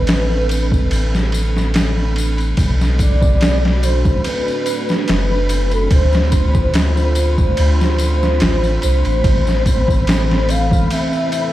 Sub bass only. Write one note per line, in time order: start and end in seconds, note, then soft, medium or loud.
0.00 0.87 A1 loud
0.91 2.54 A1 medium
2.58 4.21 B1 loud
5.09 5.88 F#1 medium
5.92 7.54 D2 loud
7.59 8.42 D2 medium
8.42 8.79 A1 loud
8.84 9.03 C2 medium
9.06 9.22 A1 medium
9.25 10.87 A1 loud